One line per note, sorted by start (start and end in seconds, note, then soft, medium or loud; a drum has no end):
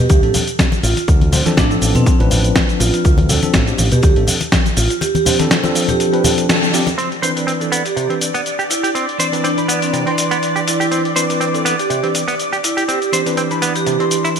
0.10 0.19 D2 medium
0.10 0.19 G4 medium
0.10 kick loud
0.10 closed hi-hat soft
0.10 muted conga medium
0.10 cabasa soft
0.23 0.31 A1 medium
0.23 0.42 F3 medium
0.23 0.42 C4 medium
0.23 0.43 D4 medium
0.23 0.43 A4 medium
0.23 closed hi-hat soft
0.34 open hi-hat loud
0.34 muted conga soft
0.34 low conga medium
0.34 cabasa medium
0.47 closed hi-hat soft
0.47 cabasa soft
0.59 kick medium
0.59 snare loud
0.59 closed hi-hat soft
0.59 cabasa soft
0.72 closed hi-hat soft
0.72 muted conga medium
0.72 cabasa soft
0.83 0.93 A1 loud
0.83 0.99 F4 medium
0.83 open hi-hat medium
0.83 cabasa medium
0.97 closed hi-hat soft
0.97 muted conga soft
0.97 cabasa soft
1.08 1.40 D2 medium
1.08 kick loud
1.08 closed hi-hat soft
1.08 cabasa soft
1.21 closed hi-hat soft
1.21 high conga medium
1.32 1.43 F3 medium
1.32 1.43 C4 medium
1.32 1.43 D4 medium
1.32 1.43 C5 medium
1.32 open hi-hat loud
1.32 muted conga medium
1.32 low conga medium
1.32 cabasa medium
1.46 1.67 F3 medium
1.46 1.67 C4 medium
1.46 1.68 D4 medium
1.46 1.68 A4 loud
1.46 snare soft
1.46 closed hi-hat soft
1.46 high conga medium
1.46 cabasa soft
1.57 1.75 A1 medium
1.57 1.73 D4 medium
1.57 kick medium
1.57 snare loud
1.57 closed hi-hat soft
1.57 muted conga soft
1.57 cabasa soft
1.70 2.16 F3 medium
1.70 2.17 C4 medium
1.70 2.17 D4 medium
1.70 2.17 A4 loud
1.70 closed hi-hat soft
1.70 cabasa soft
1.82 1.91 A1 loud
1.82 open hi-hat medium
1.82 cabasa medium
1.95 2.03 B2 medium
1.95 2.09 C4 medium
1.95 closed hi-hat soft
1.95 muted conga medium
1.95 low conga medium
1.95 cabasa soft
2.06 kick loud
2.06 closed hi-hat soft
2.06 cabasa soft
2.19 2.51 A1 medium
2.19 3.26 F3 medium
2.19 3.27 C4 medium
2.19 3.27 D4 medium
2.19 3.27 B4 loud
2.19 closed hi-hat soft
2.19 muted conga soft
2.31 open hi-hat loud
2.31 low conga medium
2.31 cabasa medium
2.44 closed hi-hat soft
2.44 cabasa soft
2.55 kick medium
2.55 snare loud
2.55 closed hi-hat soft
2.55 muted conga medium
2.55 cabasa soft
2.69 closed hi-hat soft
2.69 cabasa soft
2.80 2.90 A1 loud
2.80 2.89 F4 medium
2.80 open hi-hat medium
2.80 muted conga soft
2.80 cabasa medium
2.94 3.01 F4 medium
2.94 closed hi-hat soft
2.94 cabasa soft
3.05 3.37 D2 medium
3.05 kick loud
3.05 closed hi-hat medium
3.05 cabasa soft
3.18 closed hi-hat soft
3.18 muted conga medium
3.18 high conga medium
3.29 3.39 F3 medium
3.29 3.40 C4 medium
3.29 3.40 D4 medium
3.29 3.40 A4 loud
3.29 open hi-hat loud
3.29 low conga medium
3.29 cabasa medium
3.42 3.64 F3 medium
3.42 3.64 C4 medium
3.42 3.64 D4 medium
3.42 3.64 A4 medium
3.42 closed hi-hat medium
3.42 muted conga medium
3.42 high conga medium
3.42 cabasa soft
3.54 3.72 A1 medium
3.54 kick medium
3.54 snare loud
3.54 closed hi-hat medium
3.54 cabasa soft
3.67 3.87 F3 medium
3.67 3.87 C4 medium
3.67 3.87 D4 medium
3.67 3.87 G4 medium
3.67 closed hi-hat soft
3.67 cabasa soft
3.78 3.88 A1 loud
3.78 open hi-hat medium
3.78 muted conga medium
3.78 cabasa medium
3.92 4.00 B2 medium
3.92 3.99 G4 medium
3.92 closed hi-hat medium
3.92 low conga medium
3.92 cabasa soft
4.03 4.13 D2 medium
4.03 4.12 G4 medium
4.03 kick loud
4.03 closed hi-hat soft
4.03 muted conga soft
4.03 cabasa soft
4.16 4.24 A1 medium
4.16 4.36 F3 medium
4.16 4.36 C4 medium
4.16 4.36 D4 medium
4.16 4.36 A4 medium
4.16 closed hi-hat soft
4.27 open hi-hat medium
4.27 low conga medium
4.27 cabasa medium
4.41 closed hi-hat medium
4.41 muted conga medium
4.41 cabasa soft
4.52 kick medium
4.52 snare loud
4.52 closed hi-hat medium
4.52 cabasa soft
4.66 closed hi-hat soft
4.66 muted conga medium
4.66 cabasa soft
4.77 4.87 A1 loud
4.77 4.92 F4 medium
4.77 open hi-hat medium
4.77 cabasa medium
4.90 closed hi-hat medium
4.90 cabasa soft
5.01 5.10 G4 medium
5.01 closed hi-hat medium
5.01 muted conga medium
5.01 cabasa soft
5.15 5.22 G4 medium
5.15 closed hi-hat soft
5.15 high conga medium
5.15 cabasa soft
5.25 5.36 F3 medium
5.25 5.36 C4 medium
5.25 5.36 D4 medium
5.25 5.37 C5 loud
5.25 open hi-hat loud
5.25 muted conga soft
5.25 low conga medium
5.25 cabasa medium
5.39 5.61 F3 medium
5.39 5.61 C4 medium
5.39 5.61 D4 medium
5.39 5.61 A4 loud
5.39 snare soft
5.39 closed hi-hat medium
5.39 high conga medium
5.39 cabasa soft
5.51 snare loud
5.51 closed hi-hat medium
5.51 cabasa soft
5.63 6.10 F3 loud
5.63 6.10 C4 medium
5.63 6.10 D4 medium
5.63 6.10 A4 loud
5.63 closed hi-hat soft
5.63 muted conga medium
5.63 cabasa soft
5.75 open hi-hat medium
5.75 cabasa medium
5.88 6.24 G4 medium
5.88 closed hi-hat medium
5.88 muted conga medium
5.88 low conga medium
5.88 cabasa soft
6.00 closed hi-hat medium
6.00 cabasa soft
6.12 6.22 F3 medium
6.12 6.22 C4 medium
6.12 6.22 D4 medium
6.12 6.22 B4 loud
6.12 closed hi-hat soft
6.24 6.46 F3 medium
6.24 6.46 C4 medium
6.24 6.47 D4 medium
6.24 6.47 A4 medium
6.24 open hi-hat loud
6.24 muted conga medium
6.24 low conga medium
6.24 cabasa medium
6.38 closed hi-hat medium
6.38 cabasa soft
6.49 6.71 F3 medium
6.49 6.71 C4 medium
6.49 6.71 D4 medium
6.49 6.71 A4 medium
6.49 snare loud
6.49 closed hi-hat medium
6.49 muted conga medium
6.49 cabasa soft
6.63 closed hi-hat soft
6.63 cabasa soft
6.73 6.87 F3 medium
6.73 6.88 C4 medium
6.73 6.88 D4 medium
6.73 6.88 G4 loud
6.73 open hi-hat medium
6.73 cabasa medium
6.87 closed hi-hat medium
6.87 muted conga medium
6.87 cabasa soft
6.98 7.08 C4 medium
6.98 14.40 D5 medium
6.98 closed hi-hat soft
6.98 cabasa soft
7.12 closed hi-hat soft
7.22 7.33 E3 medium
7.22 7.33 C4 medium
7.22 7.33 D4 medium
7.22 7.33 B4 medium
7.22 7.29 C5 medium
7.22 closed hi-hat medium
7.22 cabasa medium
7.36 7.57 E3 medium
7.36 7.58 C4 medium
7.36 7.58 D4 medium
7.36 7.58 B4 medium
7.36 closed hi-hat soft
7.36 cabasa soft
7.47 7.51 C4 medium
7.47 closed hi-hat soft
7.47 cabasa soft
7.60 7.80 E3 medium
7.60 7.80 C4 medium
7.60 7.80 D4 medium
7.60 7.80 A4 medium
7.60 closed hi-hat soft
7.60 cabasa soft
7.72 7.82 B3 medium
7.72 closed hi-hat medium
7.72 cabasa medium
7.85 7.93 G4 medium
7.85 closed hi-hat soft
7.85 cabasa soft
7.96 8.07 C3 medium
7.96 8.05 G4 medium
7.96 closed hi-hat soft
7.96 cabasa soft
8.09 8.29 E3 medium
8.09 8.29 C4 medium
8.09 8.13 C4 medium
8.09 8.29 D4 medium
8.09 8.30 B4 medium
8.09 closed hi-hat soft
8.21 closed hi-hat medium
8.21 cabasa medium
8.34 8.40 B3 medium
8.34 closed hi-hat soft
8.34 cabasa soft
8.46 closed hi-hat soft
8.46 cabasa soft
8.59 8.62 G4 medium
8.59 closed hi-hat soft
8.59 cabasa soft
8.70 8.85 E4 medium
8.70 closed hi-hat medium
8.70 cabasa medium
8.83 8.89 G4 medium
8.83 closed hi-hat soft
8.83 cabasa soft
8.95 9.05 C4 medium
8.95 closed hi-hat soft
8.95 cabasa soft
9.09 closed hi-hat soft
9.19 9.29 E3 medium
9.19 9.29 C4 medium
9.19 9.30 D4 medium
9.19 9.26 C5 medium
9.19 9.30 D5 medium
9.19 closed hi-hat medium
9.19 cabasa medium
9.32 9.54 E3 medium
9.32 9.54 C4 medium
9.32 9.54 D4 medium
9.32 9.54 B4 medium
9.32 closed hi-hat soft
9.32 cabasa soft
9.44 9.48 C4 medium
9.44 9.59 D4 medium
9.44 closed hi-hat soft
9.44 cabasa soft
9.57 10.03 E3 medium
9.57 10.04 D4 medium
9.57 10.04 B5 medium
9.57 closed hi-hat soft
9.57 cabasa soft
9.68 9.79 B3 medium
9.68 closed hi-hat medium
9.68 cabasa medium
9.82 9.96 C4 medium
9.82 closed hi-hat soft
9.82 cabasa soft
9.93 10.03 C3 medium
9.93 closed hi-hat soft
9.93 cabasa soft
10.06 11.13 E3 medium
10.06 10.10 C4 medium
10.06 11.14 D4 medium
10.06 11.14 C6 medium
10.06 closed hi-hat soft
10.18 closed hi-hat medium
10.18 cabasa medium
10.31 10.37 B3 medium
10.31 closed hi-hat soft
10.31 cabasa soft
10.43 closed hi-hat soft
10.43 cabasa soft
10.56 10.59 G4 medium
10.56 closed hi-hat soft
10.56 cabasa soft
10.67 10.76 E4 medium
10.67 closed hi-hat medium
10.67 cabasa medium
10.80 10.88 E4 medium
10.80 10.86 G4 medium
10.80 closed hi-hat soft
10.80 cabasa soft
10.91 11.02 C4 medium
10.91 closed hi-hat soft
10.91 cabasa soft
11.05 closed hi-hat soft
11.16 11.26 E3 medium
11.16 11.27 C4 medium
11.16 11.27 D4 medium
11.16 11.27 B4 medium
11.16 11.23 C5 medium
11.16 closed hi-hat medium
11.16 cabasa medium
11.29 11.51 E3 medium
11.29 11.51 C4 medium
11.29 11.51 D4 medium
11.29 11.51 B4 medium
11.29 closed hi-hat soft
11.29 cabasa soft
11.41 11.45 C4 medium
11.41 closed hi-hat soft
11.41 cabasa soft
11.53 11.73 E3 medium
11.53 11.73 C4 medium
11.53 11.74 D4 medium
11.53 11.74 A4 medium
11.53 closed hi-hat soft
11.53 cabasa soft
11.65 11.75 B3 medium
11.65 closed hi-hat medium
11.65 cabasa medium
11.79 11.86 G4 medium
11.79 closed hi-hat soft
11.79 cabasa soft
11.90 12.00 C3 medium
11.90 11.99 G4 medium
11.90 closed hi-hat soft
11.90 cabasa soft
12.03 12.23 E3 medium
12.03 12.23 C4 medium
12.03 12.07 C4 medium
12.03 12.23 D4 medium
12.03 12.23 B4 medium
12.03 closed hi-hat soft
12.15 closed hi-hat medium
12.15 cabasa medium
12.28 12.33 B3 medium
12.28 closed hi-hat soft
12.28 cabasa soft
12.40 closed hi-hat soft
12.40 cabasa soft
12.53 12.56 G4 medium
12.53 closed hi-hat soft
12.53 cabasa soft
12.64 12.79 E4 medium
12.64 closed hi-hat medium
12.64 cabasa medium
12.77 12.83 G4 medium
12.77 closed hi-hat soft
12.77 cabasa soft
12.88 12.99 C4 medium
12.88 12.97 G4 medium
12.88 closed hi-hat soft
12.88 cabasa soft
13.02 13.09 G4 medium
13.02 closed hi-hat soft
13.02 cabasa soft
13.13 13.23 E3 medium
13.13 13.23 C4 medium
13.13 13.23 D4 medium
13.13 13.20 C5 medium
13.13 13.24 D5 medium
13.13 closed hi-hat medium
13.13 cabasa medium
13.26 13.48 E3 medium
13.26 13.48 C4 medium
13.26 13.48 D4 medium
13.26 13.48 B4 medium
13.26 closed hi-hat soft
13.26 cabasa soft
13.37 13.42 C4 medium
13.37 closed hi-hat soft
13.37 cabasa soft
13.51 13.97 E3 medium
13.51 13.97 D4 medium
13.51 13.97 B5 medium
13.51 closed hi-hat soft
13.51 cabasa soft
13.62 13.72 B3 medium
13.62 closed hi-hat medium
13.62 cabasa medium
13.76 14.12 G4 medium
13.76 closed hi-hat soft
13.76 cabasa soft
13.86 13.97 C3 medium
13.86 closed hi-hat soft
13.86 cabasa soft
13.99 14.40 E3 medium
13.99 14.03 C4 medium
13.99 14.40 D4 medium
13.99 14.40 C6 medium
13.99 closed hi-hat soft
14.11 closed hi-hat medium
14.11 cabasa medium
14.25 14.28 E4 medium
14.25 closed hi-hat soft
14.25 cabasa soft
14.36 closed hi-hat soft
14.36 cabasa soft